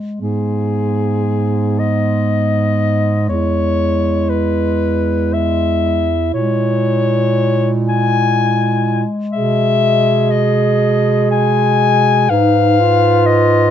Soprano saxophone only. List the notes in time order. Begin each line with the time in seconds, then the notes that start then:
0.20 G#4
1.79 D#5
3.29 C#5
4.29 B4
5.33 E5
6.34 C#5
7.89 G#5
9.32 E5
10.31 D#5
11.31 G#5
12.30 F5
13.26 D#5